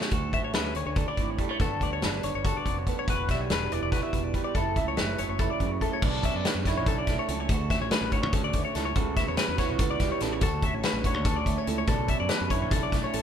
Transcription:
Already playing: E2 F#3 A3 C#4 E4
0.01 C#5, snare
0.11 D2 F#4 A4, kick, closed hi-hat
0.33 A1 A3 E5, kick, closed hi-hat
0.44 C#5
0.53 D2 C#4 B4, snare, closed hi-hat
0.75 D2 D3 C#5, closed hi-hat
0.87 D2 C#5
0.96 D4 A4, kick, closed hi-hat
1.08 E4 D5
1.17 G#1 A2, kick, closed hi-hat
1.30 C#5
1.38 G3 A4, kick, closed hi-hat
1.49 A3 C#5
1.60 G1 G2 D3 B3 D4 F#4 A4, kick, closed hi-hat
1.81 D2 B3 D5, kick, closed hi-hat
1.93 C#5
2.02 G1 D4 B4, snare, closed hi-hat
2.23 G1 D3 C#5, closed hi-hat
2.35 G1 C#5
2.45 F#4 A4, kick, closed hi-hat
2.57 D5
2.65 F1 D3, kick, closed hi-hat
2.78 C#5
2.87 B3 A4, kick, closed hi-hat
2.99 C#5
3.08 E1 E2 F#4 B4, kick, closed hi-hat
3.29 B1 G3 E5, kick, snare, closed hi-hat
3.41 C#5
3.50 E1 D4 B4, snare, closed hi-hat
3.71 E1 E3 D5, closed hi-hat
3.82 E1 D5
3.92 F#4 B4, kick, snare, closed hi-hat
4.03 E5
4.13 E1 B2, kick, closed hi-hat
4.24 D5
4.34 G3 B4, kick, closed hi-hat
4.44 D5
4.55 F#1 F#2 E4 A4, kick, closed hi-hat
4.76 C#2 A3 E5, kick, closed hi-hat
4.88 C#5
4.97 F#1 C#4 B4, snare, closed hi-hat
5.18 F#1 F#3 C#5, closed hi-hat
5.28 F#1 C#5
5.39 E4 A4, kick, closed hi-hat
5.50 D5
5.60 F#2 C#3, kick, closed hi-hat
5.72 C#5
5.81 A3 A4, kick, closed hi-hat
5.93 C#5
6.02 B1 B2 D4 A4, kick, crash
6.23 C#4 E5, kick, closed hi-hat
6.35 F#2 D5
6.45 B4, snare, closed hi-hat
6.55 F#2
6.65 D3 E4 C#5, kick, snare, closed hi-hat
6.76 B1 C#5
6.86 C#4 A4, kick, closed hi-hat
6.98 D5
7.07 B1 A3, kick, snare, closed hi-hat
7.19 C#5
7.28 C#2 F#2 C#4 A4, closed hi-hat
7.40 C#5
7.49 D2 F#4 A4, kick, closed hi-hat
7.70 C#4 E5, kick, snare, closed hi-hat
7.81 A1 C#5
7.91 B4, snare, closed hi-hat
8.01 A1
8.12 D3 F#4 C#5, kick, closed hi-hat
8.23 D2 C#5
8.33 C#4 A4, kick, closed hi-hat
8.44 D5
8.53 D2 A3, kick, closed hi-hat
8.65 C#5
8.75 C#2 A2 C#4 A4, snare, closed hi-hat
8.85 C#5
8.96 C#2 C#3 F#4 A4, kick, closed hi-hat
9.16 B3 E5, kick, snare, closed hi-hat
9.28 E2 C#5
9.37 B4, snare, closed hi-hat
9.49 E2
9.58 E3 F#4 C#5, kick, snare, closed hi-hat
9.69 C#2 C#5
9.79 B3 A4, kick, closed hi-hat
9.91 D5
10.00 C#2 G3, kick, snare, closed hi-hat
10.12 C#5
10.20 A1 C#3 B3 A4, snare, closed hi-hat
10.33 C#5
10.41 D2 F#4 A4, kick, closed hi-hat
10.62 C#4 E5, kick, closed hi-hat
10.73 A1 C#5
10.83 B4, snare, closed hi-hat
10.93 A1
11.04 D3 F#4 C#5, kick, closed hi-hat
11.14 D2 C#5
11.25 C#4 A4, kick, closed hi-hat
11.36 D5
11.46 D2 A3, kick, closed hi-hat
11.58 C#5
11.67 C#2 A2 C#4 A4, closed hi-hat
11.78 C#5
11.87 B1 B2 D4 A4, kick, closed hi-hat
12.08 C#4 E5, kick, closed hi-hat
12.20 F#2 D5
12.29 B4, snare, closed hi-hat
12.41 F#2
12.50 D3 E4 C#5, kick, closed hi-hat
12.62 B1 C#5
12.71 C#4 A4, kick, closed hi-hat
12.83 D5
12.92 B1 A3, kick, snare, closed hi-hat
13.04 C#5
13.13 A1 F#2 C#4 A4, closed hi-hat

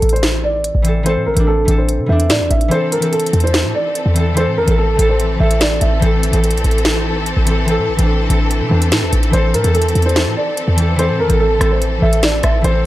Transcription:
Already playing: E3 C4 A4
0.02 A1, closed hi-hat
0.09 C5, closed hi-hat
0.16 closed hi-hat
0.23 snare
0.44 D5
0.64 closed hi-hat
0.75 A1
0.82 E3 C4, closed hi-hat
0.88 A4
1.03 E3 C4 C5, closed hi-hat
1.09 A4
1.16 A2
1.26 A1 A#4
1.34 A1 E3 C4, closed hi-hat
1.40 D4
1.47 A4
1.65 A1 E3 C4, closed hi-hat
1.71 A4
1.78 C5
1.89 closed hi-hat
1.99 C3
2.06 E2 E3 C4 E5
2.12 D4
2.20 closed hi-hat
2.30 A2 D5, snare, closed hi-hat
2.40 E2
2.51 A1 E5, closed hi-hat
2.61 closed hi-hat
2.68 E3 C4 A4 C5, closed hi-hat
2.74 A4
2.92 A#4, closed hi-hat
2.99 E3 C4, closed hi-hat
3.05 A4
3.13 A4, closed hi-hat
3.20 closed hi-hat
3.26 closed hi-hat
3.33 E2, closed hi-hat
3.40 C5, closed hi-hat
3.47 closed hi-hat
3.54 snare
3.64 A2
3.75 D5
3.95 closed hi-hat
4.06 E2
4.13 E3 C4, closed hi-hat
4.19 A4
4.34 E3 C4 C5, closed hi-hat
4.40 A4
4.47 A2
4.57 E2 A#4
4.65 A1 E3 C4, closed hi-hat
4.71 A4
4.78 A4
4.96 A1 E3 C4, closed hi-hat
5.02 A4
5.09 C5
5.20 closed hi-hat
5.37 A1 E3 C4 E5
5.43 A4
5.51 closed hi-hat
5.61 D5, snare, closed hi-hat
5.81 A1 E5, closed hi-hat
5.99 A1 E3 C4, closed hi-hat
6.05 A4
6.23 closed hi-hat
6.30 A1 E3 C4, closed hi-hat
6.36 A4
6.44 closed hi-hat
6.51 A#1, closed hi-hat
6.57 closed hi-hat
6.64 A1, closed hi-hat
6.71 closed hi-hat
6.78 closed hi-hat
6.85 snare
7.26 closed hi-hat
7.37 A1
7.44 E3 C4, closed hi-hat
7.50 A4
7.65 E3 C4, closed hi-hat
7.71 A4
7.78 A2
7.88 A1
7.96 A1 E3 C4, closed hi-hat
8.02 D4
8.27 A1 E3 C4, closed hi-hat
8.33 A4
8.51 closed hi-hat
8.61 C3
8.68 E2 E3 C4
8.74 D4
8.82 closed hi-hat
8.92 A2, snare, closed hi-hat
9.02 E2
9.13 A1, closed hi-hat
9.23 closed hi-hat
9.30 A1 E3 C4 C5, closed hi-hat
9.36 A4
9.54 A2 A#4, closed hi-hat
9.62 E2 E3 C4, closed hi-hat
9.67 A4
9.75 A4, closed hi-hat
9.82 closed hi-hat
9.89 closed hi-hat
9.95 E2, closed hi-hat
10.02 C5, closed hi-hat
10.09 closed hi-hat
10.16 snare
10.26 A2
10.37 D5
10.57 closed hi-hat
10.68 E2
10.76 E3 C4, closed hi-hat
10.81 A4
10.96 E3 C4 C5, closed hi-hat
11.02 A4
11.09 A2
11.20 E2 A#4
11.27 A1 E3 C4, closed hi-hat
11.33 A4
11.40 A4
11.58 A1 E3 C4, cross-stick, closed hi-hat
11.64 A4
11.71 C5
11.82 closed hi-hat
11.99 A1 E3 C4 E5
12.05 A4
12.13 closed hi-hat
12.23 D5, snare, closed hi-hat
12.43 A1 E5, cross-stick, closed hi-hat
12.61 A1 E3 C4 A4 C5, closed hi-hat
12.67 A4

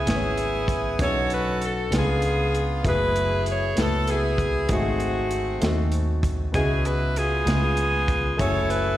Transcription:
Already playing: C#3 B3 C#4 E4 G#4 B4
0.05 G#1 B3 C#4 E4 G#4 B4, snare, closed hi-hat
0.15 C#5
0.37 closed hi-hat
0.68 kick, closed hi-hat
0.99 B1 B2 B3 C#4 D4 F#4 A4 C#5, kick, closed hi-hat
1.07 D#4
1.30 B4, closed hi-hat
1.62 A4, closed hi-hat
1.90 C#2 C#3 B3 C#4 D4 F4 G#4, snare, closed hi-hat
1.95 B3 F4 G#4
2.22 closed hi-hat
2.55 closed hi-hat
2.83 F#1 A3 B3 E4 F#4 G#4, kick, closed hi-hat
2.89 B4
3.16 closed hi-hat
3.46 closed hi-hat
3.51 C#5
3.76 C#2 A3 B3 E4 F#4 B4, snare, closed hi-hat
3.80 A4
4.07 B3 E4 G#4, closed hi-hat
4.38 kick, closed hi-hat
4.68 G#1 G#2 A3 C4 D#4 F#4, kick, closed hi-hat
4.72 G#4
5.00 closed hi-hat
5.31 closed hi-hat
5.61 D#2 A3 C4 D#4 F#4 A4, snare, closed hi-hat
5.92 closed hi-hat
6.23 kick, closed hi-hat
6.52 C#2 C#3 B3 C#4 E4 G#4 D#5, kick, closed hi-hat
6.57 F#4
6.85 B4, closed hi-hat
7.16 B3 F4 G#4, closed hi-hat
7.44 C#2 C#3 G#3 B3 C#4 E4 G#4, closed hi-hat
7.48 snare
7.53 F4
7.77 closed hi-hat
8.08 kick, closed hi-hat
8.37 F#1 A3 C#4 E4 F#4 A4 C#5 G#5, kick, closed hi-hat
8.70 B4, closed hi-hat

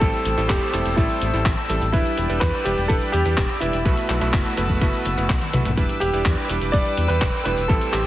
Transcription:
Already playing: G5 E6
0.00 A1 A2 G3 C4 E4 A4 C5 A5, kick, closed hi-hat, cabasa
0.13 closed hi-hat, cabasa
0.25 A1, closed hi-hat, cabasa
0.37 A1 A2 G3 C4 E4 A4, closed hi-hat, cabasa
0.48 E1 G4, kick, clap, closed hi-hat, cabasa
0.61 closed hi-hat
0.73 E1 A2 G3 C4 E4 A4, closed hi-hat, cabasa
0.86 E1, closed hi-hat, cabasa
0.96 A1 A2 G3 C4 E4 A4, kick, closed hi-hat, cabasa
1.10 closed hi-hat, cabasa
1.22 A1, closed hi-hat, cabasa
1.33 A1 A2 G3 C4 E4 A4, closed hi-hat, cabasa
1.46 A1, kick, clap, closed hi-hat, cabasa
1.58 closed hi-hat
1.69 A1 G3 C4 E4 A4, closed hi-hat, cabasa
1.82 A1, closed hi-hat, cabasa
1.92 E1 G3 D4 E4 B4 D5 G5 B5, kick, closed hi-hat, cabasa
2.06 closed hi-hat, cabasa
2.18 E1, closed hi-hat, cabasa
2.29 E1 G3 D4 E4 B4, closed hi-hat, cabasa
2.40 E2 B4, kick, clap, closed hi-hat, cabasa
2.54 closed hi-hat
2.64 E1 G3 D4 E4 G4 B4, closed hi-hat, cabasa
2.77 E1, closed hi-hat, cabasa
2.88 E1 G3 D4 E4 A4 B4, kick, closed hi-hat, cabasa
3.01 closed hi-hat, cabasa
3.12 E2 G4, closed hi-hat, cabasa
3.25 E2 G3 D4 E4 B4, closed hi-hat, cabasa
3.37 E1, kick, clap, closed hi-hat, cabasa
3.49 closed hi-hat
3.60 E1 G3 D4 E4 B4, closed hi-hat, cabasa
3.73 E1, closed hi-hat, cabasa
3.85 B1 B2 A3 E4 F#4 B4 F#5 A5 E6, kick, closed hi-hat, cabasa
3.97 closed hi-hat, cabasa
4.09 B1, clap, closed hi-hat, cabasa
4.21 B1 B2 A3 E4 F#4 B4, closed hi-hat, cabasa
4.33 F#1, kick, clap, closed hi-hat, cabasa
4.45 closed hi-hat, cabasa
4.57 F#1 B2 A3 E4 F#4 B4, closed hi-hat, cabasa
4.69 F#1, kick, closed hi-hat, cabasa
4.81 F#1 B2 A3 E4 F#4 B4, kick, closed hi-hat, cabasa
4.93 closed hi-hat, cabasa
5.06 F#1, closed hi-hat, cabasa
5.17 F#1 B2 A3 E4 F#4 B4, closed hi-hat, cabasa
5.29 B1, kick, clap, closed hi-hat, cabasa
5.42 closed hi-hat, high tom, cabasa
5.53 B1 A3 E4 F#4 B4, closed hi-hat, mid tom, cabasa
5.65 B1, closed hi-hat, mid tom, cabasa
5.77 E1 G3 D4 E4 B4 G5 D6 E6, kick, closed hi-hat, cabasa
5.89 closed hi-hat, cabasa
6.00 E1 G4, closed hi-hat, cabasa
6.13 E1 G3 D4 E4 B4, closed hi-hat, cabasa
6.25 E2, kick, clap, closed hi-hat, cabasa
6.37 closed hi-hat
6.49 E1 G3 D4 E4 B4, closed hi-hat, cabasa
6.61 E1, closed hi-hat, cabasa
6.72 E1 G3 D4 E4 B4 D5, kick, closed hi-hat, cabasa
6.85 closed hi-hat, cabasa
6.97 E2, closed hi-hat, cabasa
7.08 E2 G3 D4 E4 B4, closed hi-hat, cabasa
7.21 E1, kick, clap, closed hi-hat, cabasa
7.33 closed hi-hat
7.44 E1 A2 G3 D4 E4 B4, closed hi-hat, cabasa
7.57 E1, closed hi-hat, cabasa
7.68 A1 A2 G3 C4 E4 A4 C6, kick, closed hi-hat, cabasa
7.81 closed hi-hat, cabasa
7.92 A1 G4, clap, closed hi-hat, cabasa

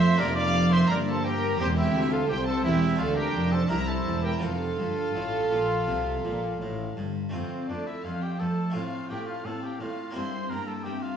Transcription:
Already playing: F2 F3 A3 C4 F4 A4 C5 E5 C6
0.16 F2 A#3 D4 G4 A#4 A#5
0.20 F1 F2 A#3 D5
0.36 D5 F5 D6
0.71 C5 E5 C6
0.87 G1 G2 A#3 A#4 A#5
0.92 D5
1.08 A4 C5 A5
1.25 G4 A#4 G5
1.57 E2 C4 G4 C5 G5
1.61 E1
1.77 E4 G4 E5
1.95 D2
2.11 F4 A4 F5
2.28 C2 C4 G4 C5 G5
2.46 A4 C5 A5
2.64 E1 E2 E4 G4 E5
2.95 A3 D4 F4
3.00 D2 D4 A4 F5
3.16 G4 A#4 G5
3.35 F1 F2
3.52 A4 C5 A5
3.67 C4 E4 G4 A#4 A#5
3.71 C2 E4 E5
3.87 A4 C5 A5
4.07 E1 E2
4.22 G4 A#4 G5
4.38 C4 F4 A4
4.43 F1 F2 F4 A4 F5
4.79 G1 G2
5.15 A1 A2
5.51 A#1 A#2
5.88 C2 C3
6.25 A#1 A#2
6.60 A1 A2
6.96 G1 G2
7.29 F2 A3 C4 F4 C5 F5
7.33 F2 C4
7.68 F2 A3 D4 D5 A5
7.87 E4 E5
8.04 F2 C4 F4 F5
8.22 G4 G5
8.38 F2 A3 A4 A5
8.70 A3 C4 F4
8.74 A2 C4 F4 F5
9.08 A2 A3 G4 G5 A5
9.26 F4 F5
9.44 A2 C4 A4 F5 A5
9.62 G4 G5
9.79 A2 A3 F4 F5 A5
10.11 A#3 C4 E4 C6
10.15 G2 C4 C5 E5
10.50 G2 A#3 A#4 G5 A#5
10.67 A4 A5
10.83 G2 C4 G4 E5 G5
11.02 F4 F5

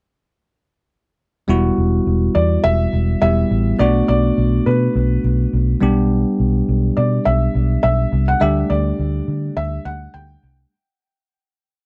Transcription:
1.48 E1 G3 B3 E4 F#4
1.78 E1
2.07 E1
2.35 E2 D5
2.64 E1 E5
2.93 E1
3.22 E1 G3 B3 E4 G4 E5
3.51 A1
3.79 B1 A3 B3 D4 F#4 D5
4.08 B1 D5
4.38 B1
4.66 B2 B4
4.95 B1
5.24 B1
5.53 B1
5.81 B1 G3 B3 D4 G4
6.40 B1
6.68 B1
6.97 B2 D5
7.25 B1 E5
7.55 B1
7.83 B1 E5
8.13 C2
8.28 F#5
8.40 D2 G3 A3 D4 G4 E5
8.70 D2 D5
8.99 D2
9.28 D3
9.57 D2 E5
9.85 D2 F#5
10.14 D2 G5
10.43 C2

